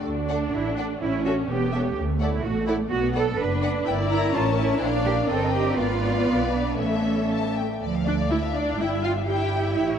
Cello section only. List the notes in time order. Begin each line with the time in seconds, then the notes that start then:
0.29 D4
0.53 E4
0.77 D4
1.01 E4
1.25 F#4
1.49 G4
2.20 E4
2.43 F#4
2.67 E4
2.91 F#4
3.15 A4
3.39 B4
4.10 E4
4.33 F4
4.58 E4
5.05 G4
5.29 A4
5.53 G4
5.77 F4
6.53 D4
6.79 C#4
7.82 F3
8.30 A3
8.79 G3
9.28 E4